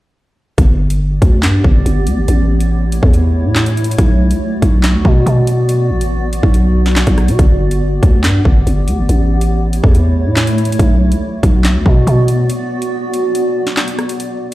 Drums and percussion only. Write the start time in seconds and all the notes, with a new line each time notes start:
0.58 kick, closed hi-hat
0.90 closed hi-hat
1.22 kick, closed hi-hat
1.43 snare, clap, closed hi-hat
1.64 kick
1.86 closed hi-hat
2.07 closed hi-hat
2.28 closed hi-hat
2.60 closed hi-hat
2.92 closed hi-hat
3.03 kick
3.13 closed hi-hat
3.56 snare, clap
3.66 closed hi-hat
3.77 closed hi-hat
3.84 closed hi-hat
3.91 closed hi-hat
3.98 kick, closed hi-hat
4.31 closed hi-hat
4.62 kick, closed hi-hat
4.83 snare, clap, closed hi-hat
5.05 kick
5.27 closed hi-hat
5.47 closed hi-hat
5.69 closed hi-hat
6.01 closed hi-hat
6.33 closed hi-hat
6.43 kick
6.54 closed hi-hat
6.86 snare
6.96 snare, clap
7.07 kick, closed hi-hat
7.18 cross-stick, closed hi-hat
7.28 closed hi-hat
7.39 kick, closed hi-hat
7.71 closed hi-hat
8.03 kick, closed hi-hat
8.24 snare, clap, closed hi-hat
8.45 kick
8.67 closed hi-hat
8.88 closed hi-hat
9.09 closed hi-hat
9.41 closed hi-hat
9.73 closed hi-hat
9.84 kick
9.94 closed hi-hat
10.37 snare, clap
10.47 closed hi-hat
10.58 closed hi-hat
10.65 closed hi-hat
10.72 closed hi-hat
10.79 kick, closed hi-hat
11.12 closed hi-hat
11.43 kick, closed hi-hat
11.64 snare, clap, closed hi-hat
11.86 kick
12.07 closed hi-hat
12.28 closed hi-hat
12.50 closed hi-hat
12.82 closed hi-hat
13.14 closed hi-hat
13.35 closed hi-hat
13.67 snare
13.77 snare, clap
13.88 closed hi-hat
13.99 cross-stick, closed hi-hat
14.09 closed hi-hat
14.20 closed hi-hat